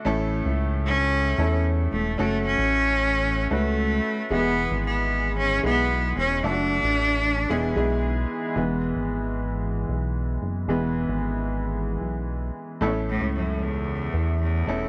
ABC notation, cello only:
X:1
M:4/4
L:1/8
Q:1/4=113
K:Emix
V:1 name="Cello"
z3 C3 z A, | A, C4 A,3 | B,2 B,2 C B,2 C | D6 z2 |
z8 | z8 | z A,, F,, E,,3 E,,2 |]